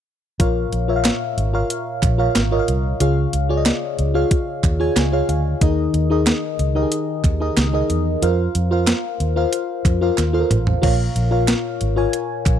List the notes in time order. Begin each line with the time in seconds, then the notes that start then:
0.40 A#1 A#2 F4 A#4 C#5 F5, kick, closed hi-hat
0.72 A#1, closed hi-hat
0.88 F4 A#4 C#5 E5
0.96 F5
1.04 snare, clap, closed hi-hat
1.37 G#1, closed hi-hat
1.53 F4 A#4 C#5 F5
1.70 closed hi-hat
2.03 A#1, kick, clap, closed hi-hat
2.18 F4 A#4 C#5 F5
2.35 G#1, snare, clap, closed hi-hat
2.51 F4 A#4 C#5 D#5
2.59 F5
2.68 C2, closed hi-hat
3.00 C#2 C#3 F4 G#4 C#5 F5, closed hi-hat
3.33 C#2, closed hi-hat
3.49 F4 G#4 C#5 D5
3.57 D#5
3.66 snare, clap, closed hi-hat
3.99 C#2, closed hi-hat
4.14 F4 G#4 C#5 F5
4.31 kick, closed hi-hat
4.63 D#2, kick, clap, closed hi-hat
4.80 F4 G#4 C#5 G#5
4.96 C#2 G#5, snare, clap, closed hi-hat
5.12 F4 G#4 C#5 F5
5.29 D2 F5, closed hi-hat
5.61 D#2 D#3 D#4 G#4 A#4 D#5, kick, closed hi-hat
5.94 D#2, closed hi-hat
6.10 D#4 G#4 A#4 D#5
6.26 snare, clap, closed hi-hat
6.59 C#2, closed hi-hat
6.75 D#4 G4 A#4 D#5
6.82 G#4
6.92 closed hi-hat
7.24 D#2, kick, clap, closed hi-hat
7.40 D#4 G#4 A#4 D#5
7.57 C#2, snare, clap, closed hi-hat
7.73 D#4 G#4 A#4 D#5
7.90 E2, closed hi-hat
8.22 F2 F4 A#4 C5 F5, closed hi-hat
8.55 F2, closed hi-hat
8.71 F4 A#4 C5 F5
8.87 snare, clap, closed hi-hat
9.20 D#2, closed hi-hat
9.36 F4 A#4 C5 F5
9.53 closed hi-hat
9.85 F2, kick, clap, closed hi-hat
10.01 F4 A#4 C5 F5
10.18 D#2, snare, clap, closed hi-hat
10.33 F4 A4 C5 F5
10.40 A#4
10.51 A1, closed hi-hat, mid tom
10.67 floor tom
10.82 A#1 A#2 F4 A#4 C#5 F5, kick, crash
11.16 A#1, closed hi-hat
11.31 F4 A#4 C#5 F5
11.48 snare, clap, closed hi-hat
11.81 G#1, closed hi-hat
11.96 F4 A#4 C#5 G#5
12.13 closed hi-hat
12.46 A#1, kick, clap, closed hi-hat